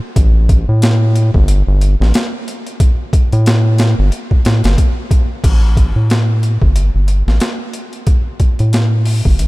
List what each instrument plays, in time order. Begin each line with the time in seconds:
0.16 analog synth bass A1, kick, closed hi-hat
0.49 kick, closed hi-hat
0.69 analog synth bass A2
0.82 snare, closed hi-hat
1.16 closed hi-hat
1.34 analog synth bass G1, kick
1.48 closed hi-hat
1.67 analog synth bass G1
1.81 closed hi-hat
2.00 analog synth bass A1, snare
2.14 snare, closed hi-hat
2.48 closed hi-hat
2.67 closed hi-hat
2.80 kick, closed hi-hat
3.13 kick, closed hi-hat
3.32 analog synth bass A2, closed hi-hat
3.46 snare, closed hi-hat
3.78 snare, closed hi-hat
3.99 analog synth bass G1
4.12 closed hi-hat
4.31 kick
4.45 analog synth bass A2, snare, closed hi-hat
4.64 analog synth bass G1, snare, closed hi-hat
4.78 kick, closed hi-hat
5.11 kick, closed hi-hat
5.44 analog synth bass A1, kick, closed hi-hat, crash
5.77 kick, closed hi-hat
5.96 analog synth bass A2
6.10 snare, closed hi-hat
6.43 closed hi-hat
6.62 analog synth bass G1, kick
6.76 closed hi-hat
6.95 analog synth bass G1
7.08 closed hi-hat
7.27 analog synth bass A1, snare
7.40 snare, closed hi-hat
7.73 closed hi-hat
7.93 closed hi-hat
8.07 kick, closed hi-hat
8.40 kick, closed hi-hat
8.59 analog synth bass A2, closed hi-hat
8.73 snare, closed hi-hat
9.05 open hi-hat
9.25 analog synth bass G1, kick
9.39 analog synth bass A1, closed hi-hat